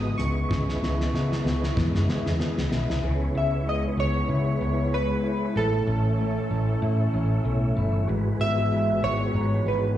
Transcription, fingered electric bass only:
0.00 0.13 G#1 medium
0.19 0.45 C#2 medium
0.50 0.76 C#2 medium
0.82 1.08 C#2 medium
1.14 1.39 C#3 medium
1.45 1.70 C#2 medium
1.77 1.91 E2 medium
1.94 2.06 F#2 medium
2.26 2.38 E2 medium
2.57 2.69 C#2 medium
2.71 2.85 B1 medium
2.90 3.01 C2 medium
3.04 3.29 C#2 loud
3.35 3.85 C#2 medium
3.97 4.23 C#2 medium
4.29 4.54 C#3 loud
4.61 5.11 C#2 medium
5.56 5.81 A1 loud
5.87 6.38 A1 medium
6.51 6.76 A1 medium
6.82 7.07 A2 loud
7.13 7.39 A1 medium
7.45 7.70 B1 medium
7.76 8.02 G1 medium
8.09 8.34 G#1 loud
8.40 8.90 G#1 medium
9.03 9.28 G#1 medium
9.34 9.59 G#2 medium
9.66 9.98 G#1 medium

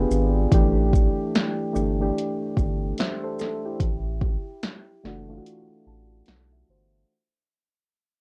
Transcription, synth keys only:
0.00 0.53 B3 medium
0.00 0.53 D4 medium
0.00 0.54 F4 medium
0.00 0.53 G4 medium
0.00 0.20 G#4 medium
0.00 0.53 B4 medium
0.51 1.39 E3 loud
0.51 1.39 A3 medium
0.51 1.40 D4 medium
0.51 1.40 G4 loud
1.73 1.91 E3 medium
1.73 1.91 A3 medium
1.73 1.92 D4 medium
1.73 1.92 G4 medium
2.00 3.14 E3 medium
2.00 3.14 A3 medium
2.00 3.15 D4 medium
2.00 2.99 G4 medium
2.99 3.22 C5 medium
2.99 3.22 E5 medium
3.24 3.39 A4 medium
3.24 3.39 C5 medium
3.40 3.63 A4 medium
3.66 4.04 E4 soft
3.66 4.04 G4 medium
5.04 5.21 E3 medium
5.04 5.21 A3 medium
5.04 5.22 D4 medium
5.04 5.22 F#4 medium
5.28 6.42 E3 medium
5.28 6.43 A3 medium
5.28 6.43 D4 medium
5.28 5.35 F4 medium
5.37 6.47 F#4 medium
5.87 6.25 A5 medium
6.28 6.50 F#5 medium
6.52 6.67 E5 medium
6.70 7.07 C5 medium

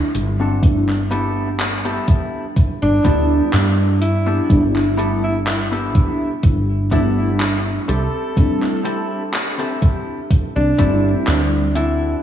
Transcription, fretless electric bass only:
0.15 1.97 G1 medium
2.56 muted fretless electric bass stroke soft
2.82 2.98 G1 medium
3.05 3.40 D2 medium
3.53 4.39 G2 loud
4.50 5.95 G1 medium
5.95 6.30 B1 medium
6.43 7.78 G1 medium
7.89 8.07 C2 medium
10.31 muted fretless electric bass stroke soft
10.56 10.72 C2 loud
10.79 11.14 G1 medium
11.28 12.14 D2 loud

